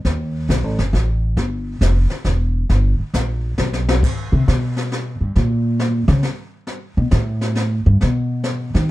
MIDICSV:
0, 0, Header, 1, 4, 480
1, 0, Start_track
1, 0, Tempo, 441501
1, 59, Time_signature, 3, 2, 24, 8
1, 9685, End_track
2, 0, Start_track
2, 0, Title_t, "Upright bass"
2, 0, Program_c, 0, 32
2, 53, Note_on_c, 0, 39, 83
2, 520, Note_off_c, 0, 39, 0
2, 531, Note_on_c, 0, 35, 86
2, 689, Note_off_c, 0, 35, 0
2, 689, Note_on_c, 0, 33, 54
2, 848, Note_off_c, 0, 33, 0
2, 855, Note_on_c, 0, 30, 69
2, 1004, Note_off_c, 0, 30, 0
2, 1011, Note_on_c, 0, 33, 91
2, 1478, Note_off_c, 0, 33, 0
2, 1488, Note_on_c, 0, 31, 80
2, 1956, Note_off_c, 0, 31, 0
2, 1966, Note_on_c, 0, 29, 90
2, 2266, Note_off_c, 0, 29, 0
2, 2443, Note_on_c, 0, 28, 90
2, 2913, Note_off_c, 0, 28, 0
2, 2931, Note_on_c, 0, 31, 83
2, 3228, Note_off_c, 0, 31, 0
2, 3409, Note_on_c, 0, 34, 85
2, 3875, Note_off_c, 0, 34, 0
2, 3896, Note_on_c, 0, 35, 84
2, 4359, Note_off_c, 0, 35, 0
2, 4700, Note_on_c, 0, 48, 74
2, 4851, Note_off_c, 0, 48, 0
2, 4869, Note_on_c, 0, 47, 68
2, 5615, Note_off_c, 0, 47, 0
2, 5660, Note_on_c, 0, 43, 43
2, 5811, Note_off_c, 0, 43, 0
2, 5831, Note_on_c, 0, 46, 72
2, 6576, Note_off_c, 0, 46, 0
2, 6609, Note_on_c, 0, 49, 97
2, 6766, Note_off_c, 0, 49, 0
2, 7580, Note_on_c, 0, 47, 74
2, 7732, Note_off_c, 0, 47, 0
2, 7741, Note_on_c, 0, 45, 68
2, 8494, Note_off_c, 0, 45, 0
2, 8547, Note_on_c, 0, 43, 78
2, 8697, Note_off_c, 0, 43, 0
2, 8726, Note_on_c, 0, 47, 74
2, 9467, Note_off_c, 0, 47, 0
2, 9511, Note_on_c, 0, 51, 80
2, 9660, Note_off_c, 0, 51, 0
2, 9685, End_track
3, 0, Start_track
3, 0, Title_t, "Muted upright bass strokes"
3, 2297, Note_on_c, 9, 29, 40
3, 2406, Note_off_c, 9, 29, 0
3, 3255, Note_on_c, 9, 29, 38
3, 3364, Note_off_c, 9, 29, 0
3, 9685, End_track
4, 0, Start_track
4, 0, Title_t, "Drums"
4, 51, Note_on_c, 9, 25, 44
4, 51, Note_on_c, 9, 38, 43
4, 53, Note_on_c, 9, 36, 19
4, 159, Note_off_c, 9, 38, 0
4, 161, Note_off_c, 9, 36, 0
4, 534, Note_on_c, 9, 36, 21
4, 540, Note_on_c, 9, 38, 59
4, 542, Note_on_c, 9, 44, 55
4, 642, Note_off_c, 9, 36, 0
4, 649, Note_off_c, 9, 38, 0
4, 651, Note_off_c, 9, 44, 0
4, 853, Note_on_c, 9, 38, 40
4, 962, Note_off_c, 9, 38, 0
4, 1014, Note_on_c, 9, 36, 22
4, 1025, Note_on_c, 9, 38, 47
4, 1123, Note_off_c, 9, 36, 0
4, 1134, Note_off_c, 9, 38, 0
4, 1487, Note_off_c, 9, 25, 0
4, 1487, Note_on_c, 9, 25, 49
4, 1487, Note_on_c, 9, 38, 43
4, 1489, Note_on_c, 9, 36, 20
4, 1595, Note_off_c, 9, 38, 0
4, 1598, Note_off_c, 9, 36, 0
4, 1968, Note_on_c, 9, 36, 23
4, 1971, Note_on_c, 9, 38, 59
4, 1973, Note_on_c, 9, 44, 63
4, 2076, Note_off_c, 9, 36, 0
4, 2080, Note_off_c, 9, 38, 0
4, 2082, Note_off_c, 9, 44, 0
4, 2281, Note_on_c, 9, 38, 39
4, 2390, Note_off_c, 9, 38, 0
4, 2439, Note_on_c, 9, 38, 44
4, 2445, Note_on_c, 9, 36, 22
4, 2548, Note_off_c, 9, 38, 0
4, 2554, Note_off_c, 9, 36, 0
4, 2930, Note_off_c, 9, 25, 0
4, 2930, Note_on_c, 9, 25, 51
4, 2930, Note_on_c, 9, 36, 22
4, 2930, Note_on_c, 9, 38, 46
4, 3038, Note_off_c, 9, 36, 0
4, 3039, Note_off_c, 9, 38, 0
4, 3413, Note_on_c, 9, 38, 64
4, 3415, Note_on_c, 9, 36, 18
4, 3415, Note_on_c, 9, 44, 55
4, 3522, Note_off_c, 9, 38, 0
4, 3524, Note_off_c, 9, 36, 0
4, 3524, Note_off_c, 9, 44, 0
4, 3890, Note_on_c, 9, 38, 48
4, 3999, Note_off_c, 9, 38, 0
4, 4059, Note_on_c, 9, 38, 59
4, 4168, Note_off_c, 9, 38, 0
4, 4224, Note_on_c, 9, 38, 85
4, 4333, Note_off_c, 9, 38, 0
4, 4380, Note_on_c, 9, 36, 71
4, 4386, Note_off_c, 9, 25, 0
4, 4386, Note_on_c, 9, 25, 46
4, 4386, Note_on_c, 9, 38, 44
4, 4386, Note_on_c, 9, 49, 72
4, 4489, Note_off_c, 9, 36, 0
4, 4495, Note_off_c, 9, 38, 0
4, 4495, Note_off_c, 9, 49, 0
4, 4871, Note_on_c, 9, 38, 58
4, 4979, Note_off_c, 9, 38, 0
4, 5180, Note_on_c, 9, 38, 36
4, 5289, Note_off_c, 9, 38, 0
4, 5346, Note_on_c, 9, 38, 43
4, 5455, Note_off_c, 9, 38, 0
4, 5823, Note_off_c, 9, 25, 0
4, 5823, Note_on_c, 9, 25, 46
4, 5823, Note_on_c, 9, 38, 44
4, 5931, Note_off_c, 9, 38, 0
4, 6299, Note_on_c, 9, 38, 59
4, 6408, Note_off_c, 9, 38, 0
4, 6611, Note_on_c, 9, 38, 39
4, 6720, Note_off_c, 9, 38, 0
4, 6770, Note_on_c, 9, 38, 43
4, 6879, Note_off_c, 9, 38, 0
4, 7250, Note_off_c, 9, 25, 0
4, 7250, Note_on_c, 9, 25, 41
4, 7250, Note_on_c, 9, 38, 41
4, 7359, Note_off_c, 9, 38, 0
4, 7732, Note_on_c, 9, 38, 63
4, 7841, Note_off_c, 9, 38, 0
4, 8058, Note_on_c, 9, 38, 40
4, 8167, Note_off_c, 9, 38, 0
4, 8212, Note_on_c, 9, 38, 44
4, 8321, Note_off_c, 9, 38, 0
4, 8705, Note_off_c, 9, 25, 0
4, 8705, Note_on_c, 9, 25, 40
4, 8705, Note_on_c, 9, 38, 43
4, 8814, Note_off_c, 9, 38, 0
4, 9172, Note_on_c, 9, 38, 59
4, 9281, Note_off_c, 9, 38, 0
4, 9507, Note_on_c, 9, 38, 39
4, 9616, Note_off_c, 9, 38, 0
4, 9685, Note_off_c, 9, 25, 0
4, 9685, End_track
0, 0, End_of_file